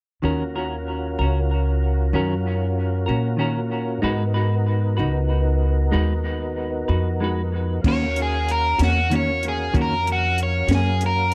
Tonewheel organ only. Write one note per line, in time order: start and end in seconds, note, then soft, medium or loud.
0.24 4.01 C#4 medium
0.24 4.01 F4 soft
0.24 4.01 F#4 soft
0.24 4.02 A#4 soft
4.05 7.81 B3 medium
4.05 7.81 D#4 medium
4.05 7.80 F#4 medium
4.05 7.81 A#4 medium
7.81 11.34 C#4 medium
7.81 11.34 F#4 medium
7.81 11.34 A#4 medium
7.81 11.34 F5 medium